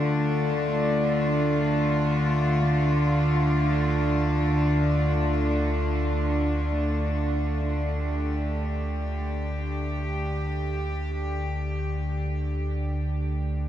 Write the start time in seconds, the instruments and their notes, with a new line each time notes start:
Already playing: synth drone D2 D3, cello section D3 A3 D4 F4, singing bowl A4
7.97 cello section G4